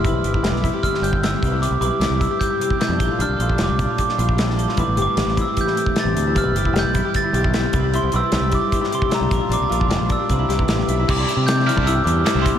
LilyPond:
<<
  \new Staff \with { instrumentName = "Glockenspiel" } { \time 4/4 \key c \major \tempo 4 = 152 f'''2 f'''8 g'''8 e'''8. r16 | d'''8 d'''4 e'''8 g'''4 g'''4 | f'''4 d'''4 d'''4. r8 | d'''8 d'''4 e'''8 g'''4 a'''4 |
f'''4 g'''4 a'''4. r8 | c'''8 e'''4 d'''4 c'''8 bes''4 | d'''4. e'''4. r4 | d'''4 g'''8 f'''8 e'''8 d'''4 c'''8 | }
  \new Staff \with { instrumentName = "Harp" } { \time 4/4 \key c \major e'8 g'16 e'16 g'8 e'16 g'8 e'16 g'8 e'16 c'8 e'16 | e'8 g'16 e'16 g'8 e'16 g'8 e'16 g'8 e'16 d'8 f'16 | d'8 f'16 d'16 f'8 d'16 f'8 d'16 f'8 e'16 d'8 f'16 | e'8 g'16 e'16 g'8 e'16 g'8 e'16 g'8 e'16 c'8 e'16 |
e'8 g'16 e'16 g'8 e'16 g'8 e'16 g'8 e'16 c'8 e'16 | e'8 g'16 e'16 g'8 e'16 g'8 e'16 g'8 e'16 d'8 f'16 | d'8 f'16 d'16 f'8 d'16 g'8 e'16 g'8 e'16 c'8 e'16 | r16 d'8 r16 c'16 d'16 e'16 d'16 e'16 g'16 e'8 g'8 e'16 b16 | }
  \new Staff \with { instrumentName = "Clean electric guitar" } { \time 4/4 \key c \major << { b'8 e'8 b'8 e'4. e'8 <g e' g' b'>8 | e'8 b'8 e'2~ e'8 g'16 a'16 | d'8 a'8 d'4. d'4 a'8 | b'8 c'8 b'8 c'2~ c'8 |
b'8 e'8 b'8 e'4. e'8 b'8 | e'8 b'8 e'2~ e'8 bes'8 | c'16 d'16 bes'8 d'4 b'8 e'8 b'8 e'8 | <g e' g' b'>8 e'8 g'2 e'8 g'8 | } \\ { g,2 d8 g4 c8~ | c4. g,8 g8 c8 b,8 bes,8~ | bes,4. bes,8 g4 g8 bes,8 | a,2 e8 a8 b,8 a,8 |
g,2 d8 g4 c8~ | c4. g,8 g8 c8 b,8 bes,8~ | bes,4. bes,8 c2 | c4. g8 g,8 g4. | } >> }
  \new Staff \with { instrumentName = "Overdriven electric guitar" } { \time 4/4 \key c \major r1 | r1 | r1 | r1 |
r1 | r1 | r1 | <c g c' e'>8 r4 <c g c' e'>8 r4 <c g c' e'>8 r8 | }
  \new Staff \with { instrumentName = "Fingered electric bass" } { \clef bass \time 4/4 \key c \major g,,16 b,,16 g,,8 f,,16 b,,8 r8. g,,4 c,8~ | c,16 c,16 b,,16 r16 c,16 c,8 r4. f,16 bes,,16 r16 | bes,,16 c,16 bes,,8 f,,16 c,8 r8. bes,,4. | a,,16 a,,16 g,,16 r16 a,,16 a,,8 r4. a,,16 d,8 |
g,,16 b,,16 g,,8 f,,16 b,,8 r8. b,,4 c,8~ | c,16 c,16 b,,16 r16 c,16 c,8 r4. c,16 bes,,16 r16 | bes,,16 c,16 bes,,8 f,,16 bes,,8 r16 c,8 c,8 a,,8 b,,8 | c,8 r16 c4 c,8. e,8 r16 c,8 r16 | }
  \new DrumStaff \with { instrumentName = "Drums" } \drummode { \time 4/4 <hh bd>8 hh16 bd16 <hh sn>16 sn16 <hh bd>8 <hh bd>16 sn16 hh16 bd16 <hh sn>8 <hh bd>8 | hh8 hh8 <hh sn>8 <hh bd>8 <hh bd>8 hh16 bd16 <hh sn>8 <hh bd>8 | hh8 hh16 bd16 <hh sn>8 <hh bd>8 <hh bd>16 sn16 hh16 bd16 <hh sn>16 sn16 hh16 sn16 | <hh bd>8 hh8 <hh sn>16 sn16 <hh bd>8 <hh bd>16 sn16 hh16 bd16 <hh sn>8 hh8 |
<hh bd>8 hh16 bd16 <hh sn>8 <hh bd>8 <hh bd>8 hh16 bd16 <hh sn>8 <hh bd>8 | hh8 hh8 <hh sn>8 <hh bd>8 <hh bd>16 sn16 hh16 bd16 <hh sn>8 <hh bd>8 | hh8 hh16 bd16 <hh sn>8 <hh bd>8 <hh bd>8 <hh sn>16 bd16 <hh sn>16 sn16 hh8 | <cymc bd>8 hh8 <hh sn>16 sn16 <hh sn>16 bd16 hh8 hh8 <hh sn>8 <hh bd>8 | }
>>